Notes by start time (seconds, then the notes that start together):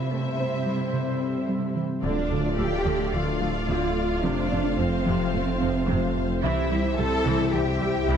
Already playing: C3 G3 C4 E4 F4 C5 D5 E5
0.11 A3 C4 A4
0.38 C4 C5
0.66 G3
0.93 C3
1.48 G3
1.76 E3
2.03 D1 D2 D3 A3 D4 F4 A4 D5 F5
2.30 D2 A3
2.58 D2 F3 A3 G4 G5 E6
2.86 D2 D3
3.13 D2 F3 A3 F4 F5
3.41 D2 F3 A3
3.68 D2 D3
4.22 F1 F2 C3 F3 C4 D4 C5 D5
4.51 F2 A3 C4 D5
4.78 F2 F3 C4 C5
5.06 F2 C3 F3
5.34 F2 A3
5.61 F2 F3 C4
5.88 F2 C3 F3
6.42 C2 C3 E3 G3 C4 E4 G4 E5
6.71 C2 G3 C4
6.97 C2 G3 A4 A5
7.26 C2 C3 E3
7.53 C2 E3 C4 G4 G5
7.80 C2 G3 E6
8.08 C2 C3 E3